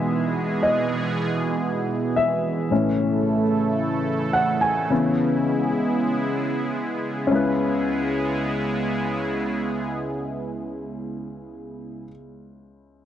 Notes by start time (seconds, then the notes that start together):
Already playing: B2 E3 G#3 B3 D#4 G#4 E5
0.63 D#5
2.16 E5
2.71 A2 C#3 E3 A3 C#4 E4 A4
4.33 F#5
4.61 G#5
4.90 C#3 E3 G#3 B3 E4 G#4
7.27 C#3 G#3 B3 C#4 E4 G#4
7.31 C#2 B4